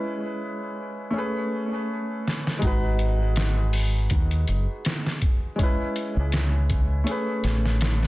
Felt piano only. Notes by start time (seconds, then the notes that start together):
Already playing: G#3 C#4 E4 B4
1.11 A3 C#4
1.16 G#4 B4
2.59 G#3 D#4
2.65 F#4 B4
5.56 G#3 C#4
5.61 E4 B4
7.04 A3 C#4
7.09 G#4 B4